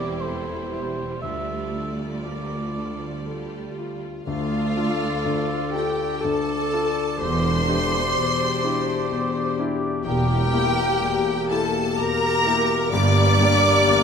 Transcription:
Already playing: E1 E2 G3 C4 E4 G4 A#4 C5 D5
0.20 A4 C5
0.72 E4 G4
1.22 D2 F4 A4 D5 E5
1.75 D4
2.23 F4 A#4 D5
2.76 D4 A4
3.26 G4 A4
3.77 F4
4.25 D2 D3 D4 F4 A4 D5 F5
4.77 D4 F4 A4
5.25 D2 D3
5.72 D4 F4 G4 G5
5.76 A4
6.20 A4 D5 A5
6.24 D2 D3
6.73 D4 F4 A4
7.18 E1 E2 G4 C5 D5 C6
7.68 D4 E4 G4
8.15 E1 E2 G4
8.64 D4 E4 G4
9.11 E1 E2
9.59 D4 E4 G4
10.03 E1 E2 A#3 G4 A#4 G5
10.53 A#3 E4 G4
11.01 E1 E2
11.47 A#3 E4 A4 A5
11.52 G4
11.95 E1 E2 G4 A#4 A#5
12.00 A#4
12.46 A#3 E4 G4
12.89 G1 G2 G4 A#4 D5 D6
12.94 G1 G2
13.41 A#3 D4 G4
13.88 G1 G2

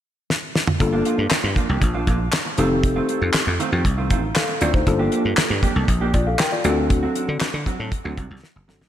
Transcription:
0.30 snare
0.55 snare
0.67 mid tom
0.80 G1 A#3 D4 F4 A4, muted clean electric guitar stroke, kick, closed hi-hat
0.93 F3 A#3 D4 F4
1.05 F3 A#3 D4 F4, closed hi-hat
1.18 G2, muted clean electric guitar stroke
1.31 muted clean electric guitar stroke, muted slap bass stroke, snare, clap, closed hi-hat
1.44 G2, muted clean electric guitar stroke
1.56 F3 A#3 D4 F4, kick, closed hi-hat
1.69 C2 F3 A#3 D4 G4
1.82 A#1, muted clean electric guitar stroke, kick, closed hi-hat
1.94 F3 A#3 D4 F4
2.07 A#1 F3 A#3 D4 F4, kick, closed hi-hat
2.20 muted clean electric guitar stroke
2.32 muted clean electric guitar stroke, snare, clap, closed hi-hat
2.45 muted clean electric guitar stroke
2.58 F1 D#3 A3 C4 D#4 F4 G4 A4, closed hi-hat
2.71 muted clean electric guitar stroke
2.84 muted clean electric guitar stroke, kick, closed hi-hat
2.96 D#3 A3 C4 F4
3.09 D#3 A3 C4 F4, closed hi-hat
3.21 F2, muted clean electric guitar stroke
3.34 muted clean electric guitar stroke, muted slap bass stroke, snare, clap, closed hi-hat
3.47 F2, muted clean electric guitar stroke
3.59 D#3 A3 C4 F4, closed hi-hat
3.72 F2 D#3 A3 C4 G4
3.85 C2, muted clean electric guitar stroke, kick, closed hi-hat
3.98 D#3 A3 C4 F4
4.10 A1 D#3 A3 C4 F4, kick, closed hi-hat
4.23 muted clean electric guitar stroke
4.35 A4 F5, snare, clap, closed hi-hat
4.48 muted clean electric guitar stroke
4.61 D2 D#3 A3 C4 F4 D5, closed hi-hat
4.74 D#4 C5, muted clean electric guitar stroke, kick
4.87 G1 A#3 D4 F4 A4, muted clean electric guitar stroke, kick, closed hi-hat
4.99 F3 A#3 D4 G4
5.12 F3 A#3 D4 G4, closed hi-hat
5.25 G2, muted clean electric guitar stroke
5.37 muted clean electric guitar stroke, muted slap bass stroke, snare, clap, closed hi-hat
5.50 G2, muted clean electric guitar stroke
5.63 F3 A#3 D4 G4, kick, closed hi-hat
5.76 C2 F3 A#3 D4 A4
5.88 A#1, muted clean electric guitar stroke, kick, closed hi-hat
6.01 F3 A#3 D4 G4
6.14 A#1 F4 D5, muted clean electric guitar stroke, kick, closed hi-hat
6.27 A4 F5, muted clean electric guitar stroke
6.39 A#4 G5, muted clean electric guitar stroke, snare, clap, closed hi-hat
6.52 F4 D5, muted clean electric guitar stroke
6.64 D2 F#3 C4 D4 F#4 A4, closed hi-hat
6.77 muted clean electric guitar stroke
6.90 muted clean electric guitar stroke, kick, closed hi-hat
7.03 F#3 C4 D4 F#4
7.15 F#3 C4 D4 F#4, closed hi-hat
7.28 D3, muted clean electric guitar stroke
7.41 muted clean electric guitar stroke, muted slap bass stroke, snare, clap, closed hi-hat
7.54 D3, muted clean electric guitar stroke
7.66 F#3 C4 D4 F#4, kick, closed hi-hat
7.79 A2 F#3 C4 D4 A4
7.92 muted clean electric guitar stroke, kick, closed hi-hat
8.04 D2 F#3 C4 D4 F#4
8.17 C2 F#3 C4 D4 F#4, kick, closed hi-hat
8.30 C2, muted clean electric guitar stroke
8.43 muted clean electric guitar stroke, snare
8.56 F#1, muted clean electric guitar stroke
8.68 G1 F#3 C4 D4 F#4 A4, snare
8.81 A1, muted clean electric guitar stroke, snare

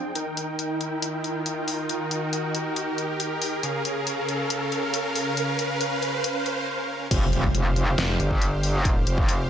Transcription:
Already playing: F3 C4 G#4 G5, riser
0.15 D#3 D#4 A#4, closed hi-hat
0.37 closed hi-hat
0.59 closed hi-hat
0.81 closed hi-hat
1.02 closed hi-hat
1.24 closed hi-hat
1.46 closed hi-hat
1.68 open hi-hat
1.89 closed hi-hat
2.11 closed hi-hat
2.33 closed hi-hat
2.55 closed hi-hat
2.76 closed hi-hat
2.98 closed hi-hat
3.20 closed hi-hat
3.42 open hi-hat
3.63 C#3 C#4 F5, closed hi-hat
3.85 closed hi-hat
4.07 closed hi-hat
4.29 closed hi-hat
4.50 closed hi-hat
4.72 closed hi-hat
4.94 closed hi-hat
5.15 open hi-hat
5.37 closed hi-hat
5.59 closed hi-hat
5.81 closed hi-hat
6.02 closed hi-hat
6.24 closed hi-hat
6.46 closed hi-hat
7.11 F1 G4 C5 F5, kick, closed hi-hat, crash, impact
7.33 closed hi-hat
7.44 kick
7.55 closed hi-hat
7.76 closed hi-hat
7.98 F1, snare, closed hi-hat
8.20 G1, closed hi-hat
8.31 kick
8.42 closed hi-hat
8.63 open hi-hat
8.85 kick, closed hi-hat
9.07 F1, closed hi-hat
9.18 kick
9.29 closed hi-hat

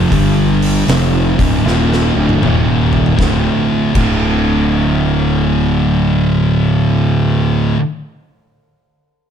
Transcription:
Already playing: F2 C3 F3
0.12 G1 G2 D3 G3, kick, open hi-hat
0.62 open hi-hat
0.88 F1 F2 C3 F3, snare, open hi-hat
1.39 D1 D2 A2 D3, kick, open hi-hat
1.65 D#1 D#2 A#2 D#3, snare
1.93 snare
2.16 D1 D2 A2 D3
2.29 high tom
2.42 D#1 D#2 A#2 D#3, mid tom
2.93 floor tom
3.06 floor tom
3.17 D1 D2 A2 D3, kick, snare
3.94 D1 D2 A2, kick, crash
3.98 D3

